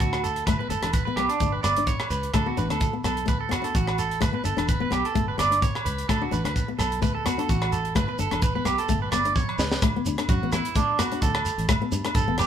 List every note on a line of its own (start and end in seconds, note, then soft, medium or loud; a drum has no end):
0.00 0.49 D2 medium
0.00 0.22 F#4 medium
0.00 kick medium
0.00 closed hi-hat soft
0.00 shekere medium
0.13 cross-stick medium
0.13 low agogo medium
0.24 0.46 A4 medium
0.24 closed hi-hat soft
0.24 shekere medium
0.36 closed hi-hat soft
0.36 shekere soft
0.47 0.57 G1 medium
0.47 0.56 A3 medium
0.47 0.58 B4 medium
0.47 kick medium
0.47 cross-stick medium
0.47 closed hi-hat medium
0.47 low agogo medium
0.47 shekere medium
0.59 0.67 B3 medium
0.59 0.70 B4 medium
0.69 0.79 G1 medium
0.69 0.92 A4 medium
0.69 muted nylon-string guitar stroke medium
0.69 closed hi-hat soft
0.69 shekere medium
0.82 1.09 E1 medium
0.82 0.99 D4 medium
0.82 cross-stick medium
0.82 closed hi-hat soft
0.82 low agogo medium
0.82 shekere soft
0.93 1.04 B4 medium
0.93 kick medium
0.93 closed hi-hat soft
0.93 shekere medium
1.05 1.14 B3 medium
1.05 1.16 B4 medium
1.16 1.26 B1 medium
1.16 1.33 B3 medium
1.16 1.29 G4 medium
1.16 cross-stick medium
1.16 closed hi-hat soft
1.16 low agogo medium
1.29 1.52 D4 medium
1.29 closed hi-hat soft
1.29 shekere soft
1.40 1.59 G1 medium
1.40 1.57 A3 medium
1.40 kick medium
1.40 closed hi-hat soft
1.40 shekere medium
1.52 1.63 B4 medium
1.63 2.00 G1 medium
1.63 1.73 B3 medium
1.63 1.86 D5 medium
1.63 cross-stick medium
1.63 closed hi-hat medium
1.63 low agogo medium
1.63 shekere medium
1.76 1.93 D4 medium
1.76 closed hi-hat medium
1.76 shekere soft
1.87 2.09 C#5 medium
1.87 kick medium
1.87 closed hi-hat soft
1.87 shekere medium
2.00 cross-stick medium
2.00 low agogo medium
2.10 2.28 C#2 loud
2.10 2.33 B4 medium
2.10 closed hi-hat soft
2.10 shekere medium
2.23 closed hi-hat soft
2.34 2.52 D2 medium
2.34 2.43 A3 medium
2.34 2.46 A4 medium
2.34 kick medium
2.34 cross-stick medium
2.34 closed hi-hat medium
2.34 low agogo medium
2.34 shekere medium
2.46 2.54 B3 medium
2.46 2.57 F#4 medium
2.57 2.67 A1 medium
2.57 2.66 D4 medium
2.57 2.70 B4 medium
2.57 closed hi-hat soft
2.57 shekere medium
2.70 2.88 D2 medium
2.70 2.86 D4 medium
2.70 2.93 A4 medium
2.70 cross-stick medium
2.70 closed hi-hat soft
2.70 low agogo soft
2.70 shekere soft
2.81 kick medium
2.81 closed hi-hat soft
2.81 shekere medium
2.93 3.00 B3 medium
3.04 3.28 B1 medium
3.04 3.20 B3 medium
3.04 3.27 A4 medium
3.04 cross-stick medium
3.04 closed hi-hat soft
3.04 low agogo medium
3.04 shekere medium
3.17 closed hi-hat soft
3.26 3.64 D2 medium
3.26 3.42 A3 medium
3.26 3.40 B4 medium
3.26 kick medium
3.26 closed hi-hat soft
3.26 shekere medium
3.41 3.51 A4 medium
3.49 3.58 B3 medium
3.49 3.63 F#4 medium
3.49 cross-stick medium
3.49 closed hi-hat soft
3.49 low agogo medium
3.49 shekere medium
3.62 3.78 D4 medium
3.62 3.74 A4 medium
3.62 closed hi-hat medium
3.62 shekere soft
3.75 4.23 A1 medium
3.75 3.97 F#4 medium
3.75 kick medium
3.75 closed hi-hat soft
3.75 shekere medium
3.87 cross-stick medium
3.87 low agogo medium
3.98 4.21 A4 medium
3.98 closed hi-hat soft
3.98 shekere medium
4.11 closed hi-hat soft
4.11 shekere soft
4.21 4.32 G1 medium
4.21 4.29 A3 medium
4.21 4.33 B4 medium
4.21 kick medium
4.21 cross-stick medium
4.21 closed hi-hat soft
4.21 low agogo medium
4.21 shekere medium
4.33 4.40 B3 medium
4.33 4.45 B4 medium
4.44 4.54 G1 medium
4.44 4.53 D4 medium
4.44 4.67 A4 medium
4.44 closed hi-hat medium
4.44 shekere medium
4.57 4.84 E1 medium
4.57 4.72 D4 medium
4.57 cross-stick medium
4.57 closed hi-hat soft
4.57 low agogo medium
4.57 shekere soft
4.68 4.80 B4 medium
4.68 kick medium
4.68 closed hi-hat medium
4.68 shekere medium
4.80 4.88 B3 medium
4.80 4.91 B4 medium
4.91 5.01 B1 medium
4.91 5.06 B3 medium
4.91 5.04 G4 medium
4.91 cross-stick medium
4.91 closed hi-hat soft
4.91 low agogo medium
4.91 shekere medium
5.05 5.27 A4 medium
5.05 closed hi-hat medium
5.15 5.33 G1 medium
5.15 5.31 A3 medium
5.15 kick medium
5.15 closed hi-hat soft
5.15 shekere medium
5.28 5.38 B4 medium
5.38 5.74 G1 medium
5.38 5.46 B3 medium
5.38 5.61 D5 medium
5.38 cross-stick medium
5.38 closed hi-hat medium
5.38 low agogo medium
5.38 shekere medium
5.51 5.66 D4 medium
5.51 closed hi-hat medium
5.51 shekere soft
5.62 5.84 C#5 medium
5.62 kick medium
5.62 closed hi-hat soft
5.62 shekere medium
5.75 cross-stick medium
5.75 low agogo medium
5.85 6.03 C#2 medium
5.85 6.07 B4 medium
5.85 closed hi-hat medium
5.85 shekere medium
5.98 closed hi-hat medium
5.98 shekere soft
6.09 6.27 D2 medium
6.09 6.17 A3 medium
6.09 6.21 A4 medium
6.09 kick medium
6.09 cross-stick medium
6.09 closed hi-hat soft
6.09 low agogo medium
6.09 shekere medium
6.21 6.28 D4 medium
6.21 6.32 F#4 medium
6.31 6.42 A1 medium
6.31 6.40 D4 medium
6.31 6.44 B4 medium
6.31 closed hi-hat soft
6.31 shekere medium
6.44 6.63 D2 medium
6.44 6.60 D4 medium
6.44 6.67 B4 medium
6.44 cross-stick medium
6.44 closed hi-hat soft
6.44 low agogo medium
6.44 shekere soft
6.56 kick medium
6.56 closed hi-hat soft
6.56 shekere medium
6.68 6.75 B3 medium
6.79 7.03 B1 medium
6.79 6.94 B3 medium
6.79 7.01 A4 medium
6.79 cross-stick medium
6.79 closed hi-hat soft
6.79 low agogo medium
6.79 shekere medium
6.92 closed hi-hat soft
7.02 7.38 D2 medium
7.02 7.17 A3 medium
7.02 7.14 B4 medium
7.02 kick medium
7.02 closed hi-hat soft
7.02 shekere medium
7.15 7.25 A4 medium
7.26 7.34 B3 medium
7.26 7.38 F#4 medium
7.26 cross-stick medium
7.26 closed hi-hat soft
7.26 low agogo medium
7.26 shekere medium
7.38 7.53 D4 medium
7.38 7.49 A4 medium
7.38 closed hi-hat soft
7.49 7.97 A1 medium
7.49 7.71 F#4 medium
7.49 kick medium
7.49 closed hi-hat soft
7.49 shekere medium
7.62 cross-stick medium
7.62 low agogo medium
7.72 7.94 A4 medium
7.72 closed hi-hat soft
7.72 shekere medium
7.85 closed hi-hat soft
7.95 8.05 G1 medium
7.95 8.04 A3 medium
7.95 8.08 B4 medium
7.95 kick medium
7.95 cross-stick medium
7.95 closed hi-hat soft
7.95 low agogo medium
7.95 shekere medium
8.08 8.15 B3 medium
8.08 8.19 B4 medium
8.19 8.29 G1 medium
8.19 8.27 D4 medium
8.19 8.42 A4 medium
8.19 closed hi-hat soft
8.19 shekere medium
8.31 8.58 E1 medium
8.31 8.47 D4 medium
8.31 cross-stick medium
8.31 closed hi-hat soft
8.31 low agogo medium
8.31 shekere soft
8.42 8.54 B4 medium
8.42 kick medium
8.42 closed hi-hat soft
8.42 shekere medium
8.55 8.62 B3 medium
8.55 8.65 B4 medium
8.65 8.75 B1 medium
8.65 8.81 B3 medium
8.65 8.78 G4 medium
8.65 cross-stick medium
8.65 closed hi-hat soft
8.65 low agogo medium
8.65 shekere medium
8.78 9.01 A4 medium
8.78 closed hi-hat medium
8.78 shekere soft
8.89 9.07 G1 medium
8.89 9.04 A3 medium
8.89 kick medium
8.89 closed hi-hat soft
8.89 shekere medium
9.02 9.11 B4 medium
9.12 9.48 G1 medium
9.12 9.21 B3 medium
9.12 9.34 D5 medium
9.12 cross-stick medium
9.12 closed hi-hat soft
9.12 low agogo medium
9.12 shekere loud
9.25 9.41 D4 medium
9.25 closed hi-hat medium
9.25 shekere soft
9.36 9.58 C#5 medium
9.36 kick medium
9.36 high tom soft
9.36 shekere medium
9.49 low agogo medium
9.58 9.76 C#2 medium
9.58 9.81 B4 medium
9.58 snare medium
9.58 shekere medium
9.71 snare medium
9.71 shekere soft
9.82 10.00 D2 medium
9.82 9.91 A3 loud
9.82 kick loud
9.82 cross-stick medium
9.82 closed hi-hat medium
9.82 low agogo medium
9.82 shekere medium
9.96 10.03 B3 medium
10.06 10.15 D2 medium
10.06 10.15 D4 medium
10.06 closed hi-hat medium
10.06 shekere medium
10.18 10.34 D4 medium
10.18 cross-stick medium
10.18 closed hi-hat soft
10.18 low agogo medium
10.18 shekere soft
10.29 10.38 F#2 medium
10.29 10.52 F#4 medium
10.29 kick loud
10.29 closed hi-hat soft
10.29 shekere medium
10.42 10.60 A1 medium
10.42 10.50 B3 medium
10.52 10.68 B3 medium
10.52 10.75 E4 medium
10.52 cross-stick medium
10.52 closed hi-hat soft
10.52 low agogo medium
10.52 shekere medium
10.65 closed hi-hat medium
10.75 10.91 A3 medium
10.75 10.98 D4 medium
10.75 kick medium
10.75 closed hi-hat soft
10.75 shekere medium
10.99 11.07 B3 medium
10.99 11.21 F#4 medium
10.99 cross-stick medium
10.99 closed hi-hat soft
10.99 low agogo medium
10.99 shekere medium
11.12 11.27 D4 medium
11.12 closed hi-hat medium
11.22 11.49 D2 medium
11.22 11.65 A4 medium
11.22 kick medium
11.22 closed hi-hat soft
11.22 shekere medium
11.35 cross-stick medium
11.35 low agogo medium
11.46 closed hi-hat soft
11.46 shekere medium
11.58 11.66 A1 medium
11.58 closed hi-hat medium
11.58 shekere soft
11.69 11.78 G1 medium
11.69 11.77 A3 medium
11.69 kick medium
11.69 cross-stick medium
11.69 closed hi-hat soft
11.69 low agogo medium
11.69 shekere medium
11.82 11.88 B3 medium
11.92 12.02 G2 medium
11.92 12.00 D4 medium
11.92 closed hi-hat soft
11.92 shekere loud
12.05 12.20 D4 medium
12.05 cross-stick medium
12.05 closed hi-hat soft
12.05 low agogo medium
12.05 shekere soft
12.15 12.25 G2 medium
12.15 12.38 A4 medium
12.15 kick medium
12.15 closed hi-hat medium
12.15 shekere medium
12.27 12.45 E1 medium
12.27 12.35 B3 medium
12.38 12.47 B3 medium
12.38 12.47 G4 medium
12.38 cross-stick medium
12.38 closed hi-hat soft
12.38 low agogo medium
12.38 shekere medium